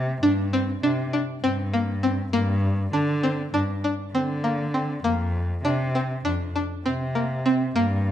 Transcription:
Already playing: cello C3
0.22 cello G2, synth pluck D4
0.53 synth pluck C4
0.82 cello C3, synth pluck D4
1.13 synth pluck D4
1.43 cello G2, synth pluck C4
1.74 synth pluck A#3
2.03 synth pluck C4
2.32 cello G2, synth pluck A#3
2.93 cello D3, synth pluck D4
3.23 synth pluck C4
3.53 cello G2, synth pluck D4
3.84 synth pluck D4
4.14 cello D3, synth pluck C4
4.44 synth pluck A#3
4.74 synth pluck C4
5.04 cello F2, synth pluck A#3
5.64 cello C3, synth pluck D4
5.95 synth pluck C4
6.25 cello F2, synth pluck D4
6.56 synth pluck D4
6.86 cello C3, synth pluck C4
7.15 synth pluck A#3
7.46 synth pluck C4
7.76 cello G2, synth pluck A#3

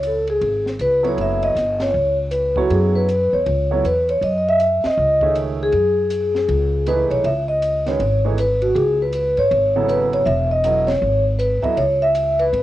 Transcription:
Already playing: upright bass C#2
0.03 hi-hat pedal, ride
0.07 vibraphone A4
0.28 vibraphone G#4, ride
0.41 upright bass G#1, ride
0.66 snare
0.79 upright bass C#2, vibraphone B4, hi-hat pedal, ride
1.03 grand piano F#3 B3 E4 A4 C#5, ride
1.07 vibraphone C#5
1.17 upright bass F#1, ride
1.22 vibraphone E5
1.43 vibraphone D#5, ride
1.55 upright bass G1, snare, hi-hat pedal, ride
1.80 vibraphone C#5, snare, ride
1.94 upright bass C#2
2.31 vibraphone B4, hi-hat pedal, ride
2.56 grand piano F#3 B3 E4 A4 C#5, vibraphone F#4, kick
2.70 upright bass F#2, vibraphone G#4, ride
2.95 vibraphone B4
3.08 hi-hat pedal, ride
3.33 upright bass E2, vibraphone C#5
3.46 upright bass C#2, ride
3.71 grand piano F#3 B3 E4 A4 C#5
3.84 upright bass E2, vibraphone B4, hi-hat pedal, ride
4.09 vibraphone C#5, ride
4.21 upright bass F#2, vibraphone D#5, ride
4.38 vibraphone D#5
4.49 vibraphone E5
4.60 hi-hat pedal, ride
4.84 vibraphone D#5, muted upright bass stroke, snare, ride
4.97 upright bass C#2
5.21 grand piano D#3 A3 G#4 C#5 E5, kick
5.35 hi-hat pedal, ride
5.63 vibraphone G#4
5.72 upright bass F#2, ride
6.10 hi-hat pedal, ride
6.35 snare
6.48 upright bass C#2, ride
6.86 grand piano E3 A3 D#4 G#4 B4, vibraphone B4, hi-hat pedal, ride
7.10 upright bass B1, vibraphone C#5, ride
7.24 upright bass C#2, vibraphone E5, ride
7.48 vibraphone D#5
7.62 hi-hat pedal, ride
7.86 grand piano D#3 G#3 C#4 F#4 B4, vibraphone C#5, snare, ride
8.00 upright bass G#1, ride
8.25 grand piano E3 A3 D#4 G#4 C#5
8.38 vibraphone B4, hi-hat pedal, ride
8.62 vibraphone F#4, ride
8.75 upright bass C#2, vibraphone G#4, ride
9.02 vibraphone B4
9.13 vibraphone B4, hi-hat pedal, ride
9.37 upright bass G#2, vibraphone C#5, ride
9.51 upright bass G#1, ride
9.76 grand piano C#3 F#3 B3 E4 A4
9.88 vibraphone B4, hi-hat pedal, ride
10.13 vibraphone C#5, ride
10.26 upright bass E1, vibraphone E5, ride
10.51 vibraphone D#5
10.64 grand piano F#3 B3 E4 A4 D#5, hi-hat pedal, ride
10.87 vibraphone C#5, snare, ride
11.02 upright bass G#1
11.39 vibraphone B4, hi-hat pedal, ride
11.63 grand piano F#3 B3 E4 A4 D#5, vibraphone E5, muted upright bass stroke, kick, ride
11.77 upright bass C#2, vibraphone C#5, ride
12.02 vibraphone E5
12.15 hi-hat pedal, ride
12.39 vibraphone B4, ride
12.52 upright bass G#1, ride

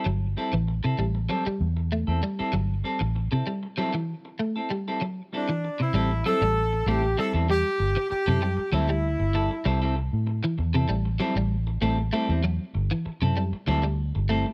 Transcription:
0.06 fingered electric bass G1, clean electric guitar F#3, muted clean electric guitar stroke
0.37 clean electric guitar G3 C4 E4 A4
0.53 fingered electric bass A1, clean electric guitar E3, muted clean electric guitar stroke
0.68 muted clean electric guitar stroke
0.84 clean electric guitar C3 C4 E4 A4, muted fingered electric bass stroke
0.99 fingered electric bass A1, clean electric guitar G3
1.15 muted clean electric guitar stroke
1.29 clean electric guitar F#3 G3 C4 A4, muted clean electric guitar stroke
1.45 clean electric guitar G3, muted clean electric guitar stroke, muted fingered electric bass stroke
1.61 fingered electric bass E2
1.77 muted clean electric guitar stroke
1.92 clean electric guitar A3, muted clean electric guitar stroke
2.07 fingered electric bass E2, clean electric guitar C4 E4 A4
2.22 clean electric guitar G3, muted clean electric guitar stroke
2.39 clean electric guitar G3 C4 E4 A4, muted fingered electric bass stroke
2.53 fingered electric bass G1, clean electric guitar F#3, muted clean electric guitar stroke
2.84 clean electric guitar G3 C4 A4
3.01 fingered electric bass A1, muted clean electric guitar stroke
3.15 muted clean electric guitar stroke
3.32 clean electric guitar C3 C4 E4 A4, muted fingered electric bass stroke
3.47 clean electric guitar G3
3.63 muted clean electric guitar stroke
3.77 clean electric guitar F#3 G3 C4 E4 A4
3.94 clean electric guitar E3, muted clean electric guitar stroke
4.25 muted clean electric guitar stroke
4.39 clean electric guitar A3, muted clean electric guitar stroke
4.56 clean electric guitar C4 E4 A4
4.70 clean electric guitar G3, muted clean electric guitar stroke
4.88 clean electric guitar G3 C4 E4 A4
5.01 clean electric guitar F#3, muted clean electric guitar stroke
5.33 clean electric guitar G3 C4 E4 A4, horn section D4
5.49 clean electric guitar E3, muted clean electric guitar stroke
5.64 muted clean electric guitar stroke
5.80 clean electric guitar C3 C4 E4, horn section E4
5.94 fingered electric bass A1, clean electric guitar G3 C4 A4, muted clean electric guitar stroke
6.11 muted clean electric guitar stroke
6.26 clean electric guitar F#3 G3 C4 E4 A4, horn section A4
6.42 fingered electric bass A1, clean electric guitar G3, muted clean electric guitar stroke
6.73 muted clean electric guitar stroke
6.86 fingered electric bass A1, clean electric guitar G3 A3 C4 E4 A4, horn section G4
7.04 muted clean electric guitar stroke
7.17 clean electric guitar G3 C4 E4 A4, horn section A4
7.34 fingered electric bass E2, clean electric guitar G3 C4 E4 A4
7.48 clean electric guitar G3, horn section G4, muted clean electric guitar stroke
7.79 fingered electric bass G1, muted clean electric guitar stroke
7.96 muted clean electric guitar stroke
8.10 horn section G4, muted clean electric guitar stroke, muted fingered electric bass stroke
8.26 fingered electric bass F#2, clean electric guitar C3 C4 E4 A4
8.42 clean electric guitar G3
8.57 muted clean electric guitar stroke, muted fingered electric bass stroke
8.72 fingered electric bass D2, clean electric guitar F#3 G3 C4 E4 A4, horn section E4
8.89 clean electric guitar G3, muted clean electric guitar stroke
9.20 fingered electric bass G1, muted clean electric guitar stroke
9.34 clean electric guitar G3 E4 A4, muted clean electric guitar stroke
9.51 muted clean electric guitar stroke
9.65 fingered electric bass C2, clean electric guitar G3 C4 E4 A4
9.82 clean electric guitar G3 C4 E4 A4
9.96 muted clean electric guitar stroke
10.13 fingered electric bass A2
10.27 muted clean electric guitar stroke
10.43 clean electric guitar E3, muted clean electric guitar stroke
10.58 fingered electric bass E2, muted clean electric guitar stroke
10.74 clean electric guitar C3 C4 E4 A4
10.89 fingered electric bass A1, clean electric guitar G3
11.05 muted clean electric guitar stroke
11.20 clean electric guitar F#3 G3 C4 E4 A4
11.36 fingered electric bass A1, clean electric guitar G3, muted clean electric guitar stroke
11.67 muted clean electric guitar stroke
11.81 fingered electric bass A1, clean electric guitar G3 A3 C4 E4 A4
11.98 muted clean electric guitar stroke
12.13 clean electric guitar G3 A3 C4 E4 A4
12.29 fingered electric bass E2, clean electric guitar G3 C4 E4
12.43 clean electric guitar F#3, muted clean electric guitar stroke
12.74 fingered electric bass G1, muted clean electric guitar stroke
12.91 clean electric guitar E3, muted clean electric guitar stroke
13.05 muted clean electric guitar stroke, muted fingered electric bass stroke
13.22 fingered electric bass F#2, clean electric guitar C3 C4 E4 A4
13.37 clean electric guitar G3
13.52 muted fingered electric bass stroke, muted clean electric guitar stroke
13.67 fingered electric bass D2, clean electric guitar F#3 G3 C4 E4 A4
13.83 clean electric guitar G3, muted clean electric guitar stroke
14.15 fingered electric bass G1, muted clean electric guitar stroke
14.29 clean electric guitar G3 A3 C4 E4 A4
14.46 muted clean electric guitar stroke

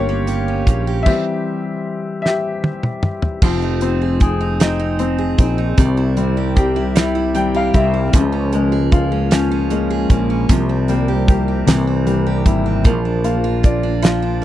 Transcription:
Already playing: fretless electric bass G1, upright piano C#3 G3 A#3 F4 G4 A#4 C#5 F5, steel-string acoustic guitar C#4 G4
0.09 steel-string acoustic guitar A#3
0.27 steel-string acoustic guitar G4, closed hi-hat
0.48 steel-string acoustic guitar C#4
0.67 fretless electric bass A#1, steel-string acoustic guitar A#3, kick, closed hi-hat
0.87 steel-string acoustic guitar G4
1.03 upright piano E3 G3 C4 E5, kick, crash
1.07 upright piano G4
2.22 upright piano G4 E5, snare
2.64 high tom
2.83 mid tom
3.03 mid tom
3.22 floor tom
3.42 fretless electric bass F1, upright piano F3, steel-string acoustic guitar C4, kick, crash
3.62 steel-string acoustic guitar D#4
3.81 upright piano C4, steel-string acoustic guitar C4, closed hi-hat
4.02 steel-string acoustic guitar G#4
4.20 steel-string acoustic guitar C4, upright piano G#4, kick, closed hi-hat
4.41 steel-string acoustic guitar D#4
4.60 steel-string acoustic guitar C4, upright piano D#4, snare, closed hi-hat
4.79 steel-string acoustic guitar D#4
4.99 steel-string acoustic guitar C4, upright piano C4, closed hi-hat
5.18 steel-string acoustic guitar G#4
5.38 fretless electric bass A#1, steel-string acoustic guitar C4, upright piano D#4, kick, closed hi-hat
5.58 steel-string acoustic guitar D#4
5.77 fretless electric bass C2, upright piano C3, steel-string acoustic guitar G3, kick, closed hi-hat
5.97 steel-string acoustic guitar E4
6.17 upright piano G3, steel-string acoustic guitar C4, closed hi-hat
6.37 steel-string acoustic guitar G4
6.56 steel-string acoustic guitar C4, upright piano G4, kick, closed hi-hat
6.76 steel-string acoustic guitar E4
6.96 steel-string acoustic guitar G3, upright piano E4, snare, closed hi-hat
7.15 steel-string acoustic guitar E4
7.35 upright piano G3 G5, steel-string acoustic guitar C4, closed hi-hat
7.55 steel-string acoustic guitar G4, upright piano F5
7.74 fretless electric bass C2, steel-string acoustic guitar C4, upright piano E4 E5, kick, closed hi-hat
7.94 steel-string acoustic guitar E4
8.13 fretless electric bass C#2, upright piano C#3, steel-string acoustic guitar F3, kick, closed hi-hat
8.32 steel-string acoustic guitar C#4
8.52 upright piano G#3, steel-string acoustic guitar A#3, closed hi-hat
8.72 steel-string acoustic guitar G#4
8.92 steel-string acoustic guitar A#3, upright piano F4, kick, closed hi-hat
9.12 steel-string acoustic guitar C#4
9.31 steel-string acoustic guitar F3, upright piano C#4, snare, closed hi-hat
9.51 steel-string acoustic guitar C#4
9.70 upright piano G#3, steel-string acoustic guitar A#3, closed hi-hat
9.90 steel-string acoustic guitar G#4
10.10 fretless electric bass A#1, steel-string acoustic guitar A#3, upright piano C#4, kick, closed hi-hat
10.30 steel-string acoustic guitar C#4
10.49 fretless electric bass C2, upright piano C3, steel-string acoustic guitar F3, kick, closed hi-hat
10.69 steel-string acoustic guitar C4
10.88 upright piano G3, steel-string acoustic guitar A#3, closed hi-hat
11.08 steel-string acoustic guitar G4
11.28 steel-string acoustic guitar A#3, upright piano G4, kick, closed hi-hat
11.48 steel-string acoustic guitar C4
11.66 fretless electric bass C2, upright piano C3, steel-string acoustic guitar E3, snare, closed hi-hat
11.87 steel-string acoustic guitar C4
12.06 upright piano G3, steel-string acoustic guitar A#3, closed hi-hat
12.27 steel-string acoustic guitar G4
12.46 fretless electric bass G#1, steel-string acoustic guitar A#3, upright piano E4, kick, closed hi-hat
12.66 steel-string acoustic guitar C4
12.84 fretless electric bass A#1, steel-string acoustic guitar F3, upright piano A#3, kick, closed hi-hat
13.05 steel-string acoustic guitar D4
13.24 steel-string acoustic guitar A#3, upright piano F4, closed hi-hat
13.44 steel-string acoustic guitar F4
13.63 steel-string acoustic guitar A#3, upright piano D5, kick, closed hi-hat
13.83 steel-string acoustic guitar D4
14.02 steel-string acoustic guitar F3, upright piano F4, snare, closed hi-hat
14.22 steel-string acoustic guitar D4

